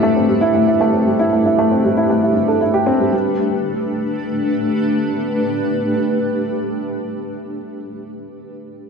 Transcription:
0.00 0.29 G3 medium
0.00 0.03 A3 medium
0.00 3.12 A3 medium
0.00 0.15 A3 medium
0.00 0.16 C4 medium
0.00 3.13 D4 medium
0.00 0.41 E4 medium
0.00 3.13 G4 medium
0.00 3.13 B4 medium
0.16 0.28 C4 medium
0.29 0.41 G3 medium
0.41 0.49 E4 medium
0.54 0.67 A3 medium
0.67 0.79 E4 medium
0.81 0.93 A3 medium
0.94 1.06 C4 medium
1.07 1.19 G3 medium
1.19 1.27 E4 medium
1.33 1.45 A3 medium
1.46 1.58 E4 medium
1.58 1.70 A3 medium
1.71 1.83 C4 medium
1.84 1.96 G3 medium
1.97 2.04 E4 medium
2.10 2.22 A3 medium
2.22 2.33 E4 medium
2.35 2.47 E4 medium
2.48 2.60 A4 medium
2.61 2.73 E4 medium
2.74 2.86 G4 medium
2.86 2.94 C4 medium
3.00 3.11 G3 medium
3.12 3.37 G3 medium
3.12 7.79 A3 medium
3.21 7.87 D4 medium
3.29 7.94 G4 medium
3.37 8.02 B4 medium

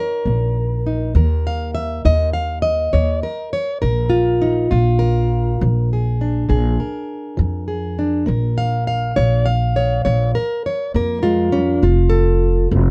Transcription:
0.00 0.85 D#4 soft
0.00 1.15 A#4 medium
0.00 0.56 C#5 medium
0.25 1.11 A#1 medium
0.25 0.81 A#3 medium
0.86 1.13 D#4 soft
1.15 2.00 D#2 loud
1.15 1.69 D#3 medium
1.15 2.93 A#4 soft
1.47 1.74 F5 medium
1.75 2.05 E5 medium
2.05 2.90 D#2 loud
2.05 2.58 D#4 medium
2.05 2.33 D#5 medium
2.33 2.62 F5 medium
2.62 3.52 D#5 loud
2.93 3.21 D#2 loud
2.93 3.48 D#3 medium
2.93 3.23 C#5 medium
3.23 3.53 A#4 medium
3.53 3.81 C#5 medium
3.82 4.68 A#1 medium
3.82 4.36 D#4 medium
3.82 4.70 A#4 medium
4.10 4.70 F4 medium
4.42 4.72 D#4 medium
4.71 5.57 A#1 medium
4.71 5.25 A#2 medium
4.71 5.60 F4 medium
4.99 5.89 A#4 loud
5.61 6.46 A#1 loud
5.61 6.15 F3 medium
5.93 6.49 G#4 soft
6.21 7.98 D4 soft
6.49 6.77 A#1 medium
6.49 7.03 A#2 medium
6.49 7.67 G#4 soft
6.80 8.24 A#4 medium
7.37 8.24 F2 medium
7.37 7.91 F3 medium
7.68 8.24 G#4 soft
7.99 8.24 D4 soft
8.26 9.13 A#1 medium
8.26 8.80 A#3 medium
8.26 9.16 A#4 medium
8.58 8.86 F5 medium
8.87 9.44 F5 medium
9.16 10.02 A#1 medium
9.16 9.70 D4 medium
9.16 9.46 C#5 loud
9.46 10.35 F5 medium
9.76 10.04 C#5 medium
10.05 10.33 A#1 medium
10.05 10.59 A#3 medium
10.05 10.35 C#5 medium
10.35 10.64 A#4 medium
10.66 10.95 C#5 medium
10.94 11.79 F2 medium
10.94 11.23 A#3 medium
10.94 11.84 A#4 medium
11.23 11.53 G#3 medium
11.23 11.82 F4 medium
11.52 11.58 G3 medium
11.52 11.82 C#4 medium
11.83 12.67 F1 loud
11.83 12.71 F4 medium
12.10 12.70 A4 loud
12.71 12.91 F1 loud
12.71 12.91 A4 medium

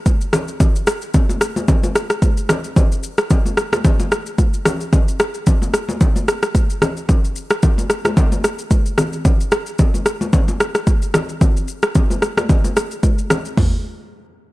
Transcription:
0.06 kick medium
0.06 high conga medium
0.06 shaker medium
0.21 shaker medium
0.33 cross-stick medium
0.33 low conga medium
0.33 shaker medium
0.48 shaker soft
0.60 kick loud
0.60 low conga medium
0.60 shaker medium
0.76 shaker medium
0.87 cross-stick loud
0.87 shaker medium
1.01 shaker soft
1.14 kick loud
1.14 low conga medium
1.14 shaker medium
1.29 high conga medium
1.29 shaker medium
1.41 cross-stick medium
1.41 shaker medium
1.56 high conga medium
1.56 shaker medium
1.68 kick loud
1.68 low conga medium
1.68 shaker medium
1.83 high conga medium
1.83 shaker medium
1.95 cross-stick medium
1.95 shaker loud
2.10 cross-stick medium
2.10 shaker medium
2.22 kick medium
2.22 high conga medium
2.22 shaker medium
2.37 shaker medium
2.49 cross-stick medium
2.49 low conga medium
2.49 shaker medium
2.64 shaker soft
2.76 kick loud
2.76 low conga medium
2.76 shaker medium
2.92 shaker medium
3.03 shaker medium
3.18 cross-stick medium
3.18 shaker medium
3.30 kick loud
3.30 low conga medium
3.30 shaker medium
3.46 high conga medium
3.46 shaker medium
3.57 cross-stick medium
3.57 shaker medium
3.72 cross-stick medium
3.72 high conga medium
3.72 shaker medium
3.85 kick loud
3.85 low conga medium
3.85 shaker medium
4.00 high conga medium
4.00 shaker medium
4.12 cross-stick medium
4.12 shaker medium
4.26 shaker medium
4.38 kick medium
4.38 high conga medium
4.38 shaker medium
4.54 shaker medium
4.65 cross-stick medium
4.65 low conga medium
4.65 shaker medium
4.80 shaker soft
4.93 kick loud
4.93 low conga medium
4.93 shaker medium
5.08 shaker medium
5.19 cross-stick medium
5.19 shaker medium
5.34 shaker medium
5.46 kick loud
5.46 low conga medium
5.46 shaker medium
5.62 high conga medium
5.62 shaker medium
5.74 cross-stick medium
5.74 shaker medium
5.89 high conga medium
5.89 shaker medium
6.01 kick loud
6.01 low conga medium
6.01 shaker medium
6.16 high conga medium
6.16 shaker medium
6.28 cross-stick medium
6.28 shaker medium
6.43 cross-stick medium
6.43 shaker medium
6.55 kick medium
6.55 high conga medium
6.55 shaker medium
6.70 shaker medium
6.82 cross-stick medium
6.82 low conga medium
6.82 shaker medium
6.97 shaker soft
7.09 kick loud
7.09 low conga medium
7.09 shaker medium
7.24 shaker medium
7.36 shaker medium
7.50 cross-stick medium
7.50 shaker soft
7.63 kick loud
7.63 low conga medium
7.63 shaker medium
7.78 high conga medium
7.78 shaker medium
7.90 cross-stick medium
7.90 shaker medium
8.05 cross-stick medium
8.05 high conga medium
8.05 shaker medium
8.17 kick loud
8.17 low conga medium
8.17 shaker medium
8.32 high conga medium
8.32 shaker medium
8.44 cross-stick medium
8.44 shaker medium
8.59 shaker medium
8.71 kick medium
8.71 high conga medium
8.71 shaker medium
8.86 shaker medium
8.98 cross-stick medium
8.98 low conga medium
8.98 shaker medium
9.13 shaker soft
9.25 kick loud
9.25 low conga medium
9.25 shaker medium
9.40 shaker medium
9.52 cross-stick loud
9.52 shaker medium
9.66 shaker medium
9.79 kick loud
9.79 low conga medium
9.79 shaker medium
9.94 high conga medium
9.94 shaker medium
10.06 cross-stick medium
10.06 shaker medium
10.21 high conga medium
10.21 shaker medium
10.33 kick loud
10.33 low conga medium
10.33 shaker medium
10.48 high conga medium
10.48 shaker medium
10.60 cross-stick medium
10.60 shaker loud
10.75 cross-stick medium
10.75 shaker medium
10.87 kick loud
10.87 high conga medium
10.87 shaker medium
11.02 shaker medium
11.14 cross-stick medium
11.14 low conga medium
11.14 shaker medium
11.29 shaker soft
11.41 kick loud
11.41 low conga medium
11.41 shaker medium
11.57 shaker medium
11.68 shaker medium
11.83 cross-stick medium
11.83 shaker medium
11.95 kick loud
11.95 low conga medium
11.95 shaker medium
12.10 high conga medium
12.10 shaker medium
12.22 cross-stick medium
12.22 shaker medium
12.37 cross-stick medium
12.37 high conga medium
12.37 shaker medium
12.49 kick loud
12.49 low conga medium
12.49 shaker medium
12.64 high conga medium
12.64 shaker medium
12.77 cross-stick medium
12.77 shaker loud
12.91 shaker medium
13.03 kick medium
13.03 high conga medium
13.03 shaker medium
13.18 shaker medium
13.30 cross-stick medium
13.30 low conga medium
13.30 shaker medium
13.45 shaker soft
13.57 kick loud
13.57 floor tom loud
13.57 open hi-hat medium
13.57 high conga medium

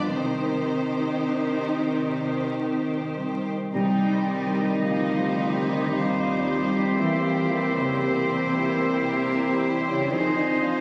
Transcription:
0.00 0.15 G2 soft
0.00 0.15 D4 soft
0.00 0.32 D#4 soft
0.00 0.15 F4 soft
0.00 0.15 B4 soft
0.09 1.31 C2 soft
0.09 3.53 C3 soft
0.09 3.73 C3 soft
0.09 3.48 D#3 soft
0.09 3.39 D#3 soft
0.09 3.36 C4 soft
0.09 3.52 D#4 soft
0.09 3.49 G4 soft
0.09 3.49 C5 soft
0.09 2.51 C5 soft
0.42 1.64 C5 soft
0.73 1.33 D#4 soft
1.03 1.56 D4 soft
1.34 4.58 D#4 soft
1.65 2.23 C5 soft
1.95 2.45 D5 soft
2.24 2.83 C5 soft
2.54 4.85 C4 soft
2.84 3.44 C5 soft
3.15 4.30 G3 soft
3.46 4.01 C5 soft
3.71 4.81 C2 medium
3.71 5.98 C3 medium
3.71 5.36 C3 medium
3.71 5.89 D#3 medium
3.71 10.13 G3 medium
3.71 4.81 G3 medium
3.71 9.95 C4 medium
3.71 4.26 D#4 medium
3.71 6.93 D#4 medium
3.71 10.07 G4 medium
3.71 5.90 D#5 medium
3.71 4.79 G5 medium
3.75 4.81 C5 soft
4.02 6.21 C5 soft
4.29 5.13 G3 soft
4.29 6.93 D#4 soft
4.59 5.68 D#4 soft
4.85 5.94 D2 medium
4.85 5.67 F3 medium
4.85 5.40 C4 soft
4.85 5.93 C5 soft
4.85 5.67 F5 medium
5.14 6.46 G3 soft
5.41 9.31 C4 soft
5.65 5.94 D#3 medium
5.65 5.93 D#5 medium
5.70 7.02 D#4 soft
5.92 6.95 D#2 medium
5.92 7.02 D#3 medium
5.92 6.95 F3 medium
5.92 6.95 G3 soft
5.92 6.96 C5 medium
5.92 10.08 C5 medium
5.92 6.66 F5 medium
6.22 7.22 C5 soft
6.47 10.16 G3 soft
6.73 7.74 G4 soft
6.96 10.12 E2 medium
6.96 7.23 E3 medium
6.96 10.17 E3 medium
6.96 9.95 A#3 medium
6.96 8.00 C4 medium
6.96 8.00 G4 medium
6.96 9.06 C5 soft
6.96 7.21 E5 medium
7.22 7.48 F3 medium
7.22 10.36 C5 soft
7.22 7.49 F5 medium
7.48 7.75 E3 medium
7.48 8.29 A#3 soft
7.48 7.74 E5 medium
7.75 8.02 C#3 medium
7.75 8.82 G4 soft
7.75 8.02 C#5 medium
8.01 9.87 C3 medium
8.01 8.55 C4 medium
8.01 8.56 E4 soft
8.01 10.08 G4 medium
8.01 9.82 C5 medium
8.30 10.16 A#3 soft
8.56 9.09 E4 medium
8.56 9.08 E4 soft
8.83 9.35 G4 soft
9.09 9.60 E4 soft
9.09 10.10 E4 medium
9.09 9.61 A#4 medium
9.36 9.86 G4 medium
9.62 10.16 E4 soft
9.62 10.11 C5 soft
9.87 10.12 C#3 medium
9.87 10.16 G4 soft
9.87 10.12 C#5 medium
10.11 10.81 F2 medium
10.11 10.37 D#3 medium
10.11 10.81 F3 medium
10.11 10.81 C4 medium
10.11 10.81 D#4 medium
10.11 10.81 G#4 medium
10.11 10.81 C5 medium
10.11 10.37 D#5 medium
10.37 10.62 D3 medium
10.37 10.81 C5 soft
10.37 10.62 D5 medium
10.62 10.81 F3 medium
10.62 10.81 F4 soft
10.62 10.81 F5 medium

